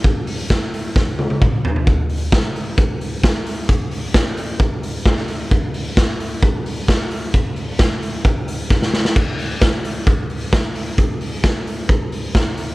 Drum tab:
CC |----------------|----------------|----------------|----------------|
HH |x-o---o---------|x-o-x-o-x-o-x-o-|x-o-x-o-x-o-x-o-|x-o-x-o-x-o-x-o-|
SD |----o---o-------|----o-------o---|----o-------o---|----o-------o---|
T1 |----------oo----|----------------|----------------|----------------|
T2 |------------o---|----------------|----------------|----------------|
FT |--------------oo|----------------|----------------|----------------|
BD |o---o---o---o---|o---o---o---o---|o---o---o---o---|o---o---o---o---|

CC |----------------|x---------------|----------------|
HH |x-o-x-o-x-o-----|--o-x-o-x-o-x-o-|x-o-x-o-x-o-x-o-|
SD |----o-------oooo|----o-------o---|----o-------o---|
T1 |----------------|----------------|----------------|
T2 |----------------|----------------|----------------|
FT |----------------|----------------|----------------|
BD |o---o---o---o---|o---o---o---o---|o---o---o---o---|